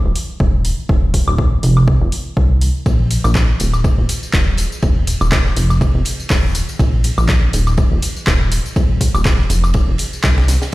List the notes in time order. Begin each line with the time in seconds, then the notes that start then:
0.05 D#1
0.16 open hi-hat
0.40 D#1, kick
0.65 open hi-hat
0.89 D#1, kick
1.14 kick, open hi-hat
1.28 D#1, high woodblock
1.38 kick
1.63 F1, open hi-hat
1.77 high woodblock
1.88 kick
2.01 F1
2.12 open hi-hat
2.37 C2, kick
2.61 open hi-hat
2.86 A#1, kick, ride, tambourine
3.11 open hi-hat, ride, tambourine
3.24 A#1, tambourine, high woodblock
3.35 kick, snare, clap, ride, tambourine
3.60 D#1, open hi-hat, ride, tambourine
3.74 ride, tambourine, high woodblock
3.84 kick, ride, tambourine
3.98 D#1
4.09 open hi-hat, ride, tambourine
4.23 tambourine
4.33 D#1, kick, snare, clap, ride, tambourine
4.57 open hi-hat, ride, tambourine
4.72 tambourine
4.82 D#1, kick, ride, tambourine
5.07 open hi-hat, ride, tambourine
5.21 D#1, tambourine, high woodblock
5.32 kick, snare, clap, ride, tambourine
5.46 snare
5.56 F1, open hi-hat, ride, tambourine
5.70 tambourine, high woodblock
5.81 kick, ride, tambourine
5.95 F1
6.05 open hi-hat, ride, tambourine
6.20 tambourine
6.29 D#1, kick, snare, clap, open hi-hat, tambourine
6.55 open hi-hat, ride, tambourine
6.69 ride, tambourine
6.79 A#1, kick, ride, tambourine
7.04 open hi-hat, ride, tambourine
7.18 A#1, tambourine, high woodblock
7.28 kick, snare, clap, ride, tambourine
7.53 D#1, open hi-hat, ride, tambourine
7.67 ride, tambourine, high woodblock
7.77 kick, ride, tambourine
7.92 D#1
8.02 open hi-hat, ride, tambourine
8.16 tambourine
8.27 D#1, kick, snare, clap, ride, tambourine
8.52 open hi-hat, ride, tambourine
8.66 tambourine
8.76 D#1, kick, ride, tambourine
9.01 kick, open hi-hat, ride, tambourine
9.14 D#1, tambourine, high woodblock
9.25 kick, snare, clap, ride, tambourine
9.39 snare
9.49 F1, open hi-hat, ride, tambourine
9.64 tambourine, high woodblock
9.74 kick, ride, tambourine
9.88 F1
9.98 open hi-hat, ride, tambourine
10.13 tambourine
10.23 C2, kick, snare, clap, ride, tambourine
10.38 snare, ride
10.48 snare, open hi-hat, ride, tambourine
10.62 snare, ride, tambourine